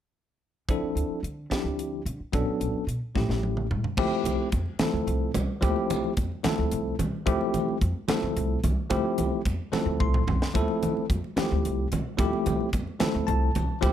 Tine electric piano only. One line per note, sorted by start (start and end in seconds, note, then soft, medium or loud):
0.69 1.19 F3 medium
0.69 1.19 C4 medium
0.69 1.19 D4 medium
0.69 1.20 E4 medium
0.69 1.20 A4 medium
1.50 2.01 F3 medium
1.50 2.01 C4 medium
1.50 2.01 D4 medium
1.50 2.01 E4 medium
1.50 2.02 G4 medium
2.32 2.83 F#3 medium
2.32 2.83 B3 medium
2.32 2.84 C#4 medium
2.32 2.84 D4 medium
2.32 2.84 A4 medium
3.15 3.65 F3 medium
3.15 3.66 A3 medium
3.15 3.66 C#4 medium
3.15 3.66 E4 medium
3.15 3.66 G4 medium
3.98 4.48 F3 medium
3.98 4.48 A3 medium
3.98 4.48 C4 medium
3.98 4.48 E4 medium
3.98 4.49 G4 loud
4.80 5.30 F3 medium
4.80 5.30 A3 medium
4.80 5.30 C4 medium
4.80 5.30 E4 medium
4.80 5.31 A4 medium
5.61 6.12 F3 medium
5.61 6.12 A3 medium
5.61 6.12 C4 medium
5.61 6.12 E4 medium
5.61 6.13 G4 loud
6.43 6.94 F3 medium
6.43 6.94 A3 medium
6.43 6.94 C4 medium
6.43 6.95 E4 medium
6.43 6.95 A4 medium
7.26 7.76 F3 medium
7.26 7.76 A3 medium
7.26 7.77 C4 medium
7.26 7.77 E4 medium
7.26 7.77 G4 loud
8.08 8.58 F3 medium
8.08 8.58 A3 medium
8.08 8.58 C4 medium
8.08 8.59 E4 medium
8.08 8.59 A4 medium
8.90 9.40 F3 medium
8.90 9.40 A3 medium
8.90 9.40 C4 medium
8.90 9.41 E4 medium
8.90 9.41 G4 medium
9.72 10.22 F3 medium
9.72 10.22 A3 medium
9.72 10.22 C4 medium
9.72 10.22 E4 medium
9.72 10.22 A4 medium
10.00 10.51 C6 medium
10.54 11.04 F3 medium
10.54 11.04 A3 medium
10.54 11.04 C4 medium
10.54 11.05 E4 medium
10.54 11.05 A4 loud
11.36 11.86 F3 medium
11.36 11.86 A3 medium
11.36 11.86 C4 medium
11.36 11.87 E4 medium
11.36 11.87 G4 medium
12.18 12.68 F3 medium
12.18 12.68 A3 medium
12.18 12.68 C4 medium
12.18 12.68 E4 medium
12.18 12.69 G4 loud
12.99 13.49 F3 medium
12.99 13.50 A3 medium
12.99 13.50 C4 medium
12.99 13.50 E4 medium
12.99 13.50 A4 medium
13.27 13.78 A5 medium
13.81 13.93 F3 medium
13.81 13.93 A3 medium
13.81 13.93 C4 medium
13.81 13.93 E4 medium
13.81 13.93 G4 medium